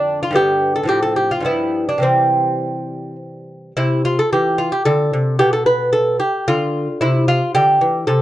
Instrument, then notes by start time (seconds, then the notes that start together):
lute
Already playing: F2 D3 A3 D4
0.23 F4
0.31 G2 D3 B3
0.35 G4
0.76 A4
0.83 A2 F3
0.87 C4 G4
1.03 A4
1.16 G4
1.31 F4
1.40 G2 F3
1.45 B3 E4
1.89 D4
1.98 C3 E3 G3
2.03 C4
3.77 C3 E4
4.05 F4
4.19 A4
4.33 E3 G4
4.58 F4
4.72 G4
4.85 D3 A4
5.13 C3
5.39 B2 G4
5.53 A4
5.66 B4
5.93 A4
6.20 G4
6.48 D3 F4
7.01 C3 E4
7.28 F4
7.55 D3 G4
7.81 E3
8.07 C3 A4